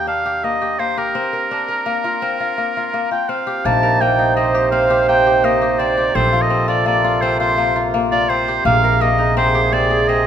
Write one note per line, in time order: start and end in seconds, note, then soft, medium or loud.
0.00 1.11 D#2 medium
0.00 0.44 A#3 medium
0.00 0.25 G4 medium
0.07 1.51 D4 medium
0.07 0.45 F5 medium
0.26 0.61 G4 medium
0.44 0.79 A#3 medium
0.44 0.81 D#5 medium
0.61 0.97 G4 medium
0.79 1.85 A#3 medium
0.79 1.00 C5 medium
0.97 2.39 G4 medium
0.97 3.11 A#4 medium
1.15 2.22 C4 medium
1.33 1.68 A#4 medium
1.51 3.19 D4 medium
1.69 2.96 A#4 medium
1.86 2.57 A#3 medium
2.04 2.40 F4 medium
2.22 3.28 C4 medium
2.40 2.76 F4 medium
2.58 2.93 A#3 soft
2.77 3.11 F4 medium
2.94 3.65 A#3 medium
3.11 4.62 F4 soft
3.11 3.31 G5 medium
3.29 4.36 C4 medium
3.29 3.67 F5 medium
3.47 4.54 G4 medium
3.64 6.11 A#1 medium
3.64 10.27 C3 medium
3.64 10.27 A#3 medium
3.64 4.01 A#3 medium
3.64 6.12 D#4 medium
3.64 6.11 C5 loud
3.64 4.02 A5 medium
3.83 5.10 A#4 medium
4.01 5.08 A#3 medium
4.01 4.35 G5 medium
4.19 5.81 D#4 medium
4.36 4.72 C4 medium
4.36 4.70 D#5 medium
4.55 4.90 G4 medium
4.71 5.79 C4 medium
4.71 5.05 F5 medium
4.90 5.26 G4 medium
5.08 5.43 A#3 medium
5.08 5.46 G5 medium
5.27 5.61 G4 medium
5.44 6.85 A#3 medium
5.44 5.80 D#5 medium
5.62 5.97 G4 medium
5.78 6.15 C4 medium
5.78 6.17 D5 medium
5.97 7.39 G4 medium
6.15 8.61 A#1 medium
6.15 6.50 C4 medium
6.15 8.63 F4 medium
6.15 8.35 A4 medium
6.15 6.43 C5 medium
6.33 6.68 F4 medium
6.42 6.68 D#5 medium
6.50 7.22 C4 medium
6.68 7.04 F4 medium
6.68 6.85 D5 medium
6.86 7.57 A#3 medium
6.86 7.23 D5 medium
7.04 7.40 F4 medium
7.21 8.29 C4 medium
7.21 7.39 C5 medium
7.40 7.75 F4 medium
7.40 7.82 C5 medium
7.58 7.94 A#3 medium
7.76 8.12 F4 medium
7.94 8.65 A#3 medium
8.12 9.63 F4 medium
8.12 8.30 D5 medium
8.29 9.36 C4 medium
8.29 8.65 C5 medium
8.48 9.54 G4 medium
8.65 10.27 A#1 medium
8.65 9.01 A#3 medium
8.65 10.27 G#4 medium
8.65 9.03 F5 medium
8.84 10.11 A#4 medium
9.01 10.27 A#3 medium
9.01 9.37 D#5 medium
9.18 10.27 D#4 medium
9.37 9.72 C4 medium
9.37 9.74 C5 medium
9.55 9.97 G4 medium
9.73 10.08 C4 medium
9.73 10.10 D5 medium
9.91 10.27 G#4 medium
10.08 10.27 C4 medium
10.08 10.27 D#5 medium